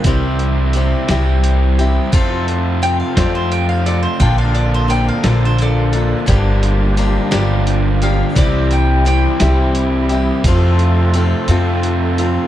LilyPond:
<<
  \new Staff \with { instrumentName = "Mandolin" } { \time 6/8 \key c \mixolydian \tempo 4. = 58 bes'4 r2 | r4 g''16 f''16 d''16 c''16 g''16 f''16 d''16 c''16 | g''16 f''16 d''16 c''16 g''16 f''16 d''16 c''16 <a' d''>4~ | <a' d''>4 r8 d''4 f''8 |
d''8 g''8 g''2~ | g''4 r2 | }
  \new Staff \with { instrumentName = "Accordion" } { \time 6/8 \key c \mixolydian r2. | r2. | <bes d' f' a'>2. | <bes d' f' g'>2. |
<g c' e' g'>2. | <a c' f' a'>2. | }
  \new Staff \with { instrumentName = "Steel-string acoustic guitar" } { \time 6/8 \key c \mixolydian <c g c' e' g'>4 <g c' e' g'>8 <c g c' e' g'>4 <c' e' g'>8 | <f c' f' a'>4 <f c' f' a'>8 <f c' f' a'>4 <c' f' a'>8 | <bes, d f bes d' a'>4 <f bes d' a'>8 <bes, d f bes d' a'>4 <f bes d' a'>8 | <g, d f bes d' g'>4 <f bes d' g'>8 <g, d f bes d' g'>4 <f bes d' g'>8 |
<c g c' e' g'>4 <g c' e' g'>8 <c g c' e' g'>4 <c' e' g'>8 | <f c' f' a'>4 <f c' f' a'>8 <f c' f' a'>4 <c' f' a'>8 | }
  \new Staff \with { instrumentName = "Overdriven electric guitar" } { \clef bass \time 6/8 \key c \mixolydian <c e g c' e'>4. <c e g c' e'>4. | <f, c f a c' f'>4. <f, c f a c' f'>4. | <bes, d bes d' f'>4. <bes, d bes d' f'>4. | <g, d g bes d' g'>4. <g, d g bes d' g'>4. |
<c e g c' g'>4. <c e g c' g'>4. | <f, c f a c' f'>4. <f, c f a c' f'>4. | }
  \new Staff \with { instrumentName = "Upright bass" } { \clef bass \time 6/8 \key c \mixolydian c,4. c,4. | f,4. f,4. | bes,,4. bes,,4. | g,,4. g,,4. |
c,4. c,4. | f,4. f,4. | }
  \new DrumStaff \with { instrumentName = "Drums" } \drummode { \time 6/8 <hh bd>8 hh8 hh8 <hh sn>8 hh8 hh8 | <hh bd>8 hh8 hh8 <hh bd sn>8 hh8 hh8 | <hh bd>8 hh8 hh8 <hh sn>8 hh8 hh8 | <hh bd>8 hh8 hh8 <hh sn>8 hh8 hh8 |
<hh bd>8 hh8 hh8 <hh sn>8 hh8 hh8 | <hh bd>8 hh8 hh8 hh8 hh8 hh8 | }
>>